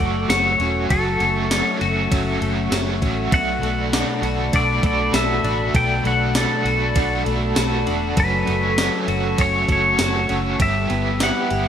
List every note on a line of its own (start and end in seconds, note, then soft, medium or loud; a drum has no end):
0.00 0.26 F#1 loud
0.00 0.90 F#3 medium
0.00 0.27 F#3 soft
0.00 0.28 A3 soft
0.00 0.29 F#4 soft
0.00 0.30 F#4 medium
0.00 3.29 A4 medium
0.00 0.32 D5 loud
0.00 0.88 F#5 medium
0.00 3.29 C#6 medium
0.28 0.56 F#1 loud
0.28 0.59 F#3 medium
0.28 0.60 A3 medium
0.28 0.59 C#4 medium
0.28 0.92 C#5 medium
0.28 snare loud
0.28 ride medium
0.28 tambourine medium
0.32 0.57 F#4 medium
0.58 0.86 E1 medium
0.58 0.90 A3 soft
0.58 0.90 C#4 medium
0.58 0.89 F#4 soft
0.58 ride soft
0.63 0.89 F#3 soft
0.89 1.17 F#1 loud
0.89 1.20 F#2 medium
0.89 1.20 C#3 medium
0.89 1.20 F#3 medium
0.89 1.20 A3 medium
0.89 1.19 C#4 medium
0.89 1.17 F#4 medium
0.89 2.68 A4 medium
0.89 3.30 E5 medium
0.89 kick loud
0.89 ride medium
1.19 1.60 F#1 loud
1.19 1.48 F#3 soft
1.19 1.49 A3 soft
1.19 1.51 C#4 medium
1.19 1.50 F#4 medium
1.19 ride soft
1.49 1.80 F#3 medium
1.49 1.81 A3 medium
1.49 1.80 C#4 medium
1.49 1.78 F#4 medium
1.49 snare loud
1.49 ride medium
1.49 tambourine medium
1.79 2.08 F#1 medium
1.79 2.11 A3 medium
1.79 2.11 C#4 medium
1.79 2.11 F#4 medium
1.79 ride soft
1.84 2.10 F#3 medium
2.10 2.38 F#1 loud
2.10 2.41 F#2 medium
2.10 2.41 C#3 medium
2.10 2.42 F#3 medium
2.10 2.42 A3 medium
2.10 2.41 C#4 medium
2.10 2.39 F#4 loud
2.10 kick medium
2.10 ride medium
2.41 2.68 F#1 loud
2.41 2.71 A3 medium
2.41 2.72 C#4 medium
2.41 2.71 F#4 medium
2.41 ride soft
2.45 2.69 F#3 medium
2.70 2.98 F#1 loud
2.70 3.02 F#3 medium
2.70 3.02 A3 medium
2.70 3.01 C#4 medium
2.70 3.00 F#4 medium
2.70 snare loud
2.70 ride medium
2.70 tambourine medium
3.01 3.29 A1 medium
3.01 3.31 F#3 medium
3.01 3.32 A3 medium
3.01 3.33 C#4 medium
3.01 3.32 F#4 medium
3.01 kick medium
3.01 ride soft
3.31 3.59 B1 loud
3.31 3.62 B2 medium
3.31 3.63 F#3 medium
3.31 3.63 A3 medium
3.31 3.63 D4 medium
3.31 3.60 F#4 medium
3.31 10.56 A4 medium
3.31 8.14 D5 medium
3.31 4.58 F#5 medium
3.31 10.56 A5 medium
3.31 8.13 B5 medium
3.31 kick loud
3.31 ride medium
3.61 4.02 B1 loud
3.61 3.92 A3 soft
3.61 3.93 D4 medium
3.61 3.92 F#4 medium
3.61 ride soft
3.92 4.23 F#3 medium
3.92 4.24 A3 medium
3.92 4.23 D4 medium
3.92 snare loud
3.92 ride soft
3.92 tambourine medium
3.96 4.21 F#4 medium
4.22 4.49 B1 loud
4.22 4.54 D4 medium
4.22 4.53 F#4 medium
4.22 ride soft
4.26 4.53 A3 medium
4.53 4.80 B1 loud
4.53 4.84 B2 medium
4.53 4.84 F#3 medium
4.53 4.84 A3 medium
4.53 4.84 D4 medium
4.53 4.82 F#4 medium
4.53 4.85 D5 loud
4.53 kick medium
4.53 ride medium
4.83 5.10 B1 medium
4.83 5.14 D4 soft
4.83 5.14 F#4 medium
4.83 5.15 D5 medium
4.83 kick medium
4.83 ride soft
4.87 5.13 A3 soft
5.12 5.40 B1 loud
5.12 5.44 F#3 medium
5.12 5.44 A3 medium
5.12 5.44 D4 medium
5.12 5.77 E5 loud
5.12 snare loud
5.12 ride medium
5.12 tambourine medium
5.16 5.42 F#4 medium
5.43 5.71 A1 loud
5.43 5.74 A3 soft
5.43 5.74 D4 medium
5.43 5.74 F#4 medium
5.43 ride soft
5.73 6.01 B1 loud
5.73 6.04 B2 medium
5.73 6.05 F#3 medium
5.73 6.06 A3 medium
5.73 6.05 D4 medium
5.73 6.07 G5 loud
5.73 kick loud
5.73 ride medium
6.04 6.45 B1 loud
6.04 6.36 D4 medium
6.04 6.35 F#4 medium
6.04 6.34 F#5 loud
6.04 ride soft
6.08 6.34 A3 soft
6.34 6.65 F#3 medium
6.34 6.66 A3 medium
6.34 6.65 D4 medium
6.34 7.23 A4 medium
6.34 snare loud
6.34 ride soft
6.34 tambourine medium
6.38 6.63 F#4 medium
6.64 6.92 B1 loud
6.64 6.96 D4 medium
6.64 6.95 F#4 medium
6.64 ride soft
6.68 6.95 A3 medium
6.95 7.22 B1 loud
6.95 7.26 B2 medium
6.95 7.26 F#3 medium
6.95 7.27 A3 medium
6.95 7.26 D4 medium
6.95 7.24 F#4 medium
6.95 kick medium
6.95 ride medium
7.25 7.53 B1 loud
7.25 7.57 D4 medium
7.25 7.56 F#4 medium
7.25 ride soft
7.29 7.56 A3 soft
7.55 7.84 B1 medium
7.55 7.86 F#3 medium
7.55 7.87 A3 medium
7.55 7.87 D4 medium
7.55 snare loud
7.55 ride medium
7.55 tambourine medium
7.59 7.84 F#4 medium
7.86 8.14 E1 medium
7.86 8.17 A3 soft
7.86 8.18 D4 medium
7.86 8.17 F#4 medium
7.86 ride soft
8.17 8.44 F#1 loud
8.17 8.47 F#2 medium
8.17 8.47 C#3 medium
8.17 8.48 F#3 medium
8.17 8.48 A3 medium
8.17 8.47 C#4 medium
8.17 8.45 F#4 medium
8.17 9.43 B4 medium
8.17 10.57 C#5 medium
8.17 10.58 C#6 medium
8.17 kick loud
8.17 ride medium
8.47 8.88 F#1 loud
8.47 8.77 A3 medium
8.47 8.78 C#4 medium
8.47 8.77 F#4 medium
8.47 ride soft
8.51 8.75 F#3 soft
8.77 9.08 F#3 medium
8.77 9.08 A3 medium
8.77 9.07 C#4 medium
8.77 snare loud
8.77 ride medium
8.77 tambourine medium
8.81 9.05 F#4 medium
9.07 9.35 F#1 loud
9.07 9.38 A3 medium
9.07 9.38 C#4 medium
9.07 9.38 F#4 medium
9.07 ride soft
9.11 9.37 F#3 medium
9.37 9.65 F#1 loud
9.37 9.68 F#2 medium
9.37 9.68 C#3 medium
9.37 9.69 F#3 medium
9.37 9.68 A3 medium
9.37 9.67 C#4 medium
9.37 9.66 F#4 medium
9.37 kick medium
9.37 ride medium
9.41 9.71 C#5 medium
9.67 9.95 F#1 medium
9.67 9.96 F#3 soft
9.67 9.98 A3 soft
9.67 9.99 C#4 soft
9.67 9.98 F#4 medium
9.67 kick medium
9.67 ride soft
9.72 10.62 C#5 loud
9.98 10.26 F#1 loud
9.98 10.29 F#3 medium
9.98 10.29 A3 medium
9.98 10.29 C#4 medium
9.98 10.27 F#4 medium
9.98 snare loud
9.98 ride medium
9.98 tambourine medium
10.28 10.56 F#1 loud
10.28 10.60 A3 medium
10.28 10.60 C#4 medium
10.28 10.59 F#4 medium
10.28 ride soft
10.32 10.59 F#3 soft
10.59 10.86 G1 loud
10.59 10.90 G3 medium
10.59 10.90 B3 medium
10.59 10.91 E4 medium
10.59 11.68 G4 medium
10.59 10.88 G4 medium
10.59 11.68 B4 medium
10.59 11.68 E5 medium
10.59 11.23 E5 loud
10.59 11.68 B5 medium
10.59 kick loud
10.59 ride medium
10.89 11.30 G1 loud
10.89 11.21 E4 medium
10.89 11.20 G4 medium
10.89 ride soft
10.94 11.20 B3 soft
11.19 11.50 G3 medium
11.19 11.51 B3 medium
11.19 11.51 E4 medium
11.19 snare loud
11.19 ride soft
11.19 tambourine medium
11.23 11.49 G4 medium
11.23 11.68 F#5 loud
11.50 11.68 G1 medium
11.50 11.68 B3 medium
11.50 11.68 E4 medium
11.50 11.68 G4 medium
11.50 ride soft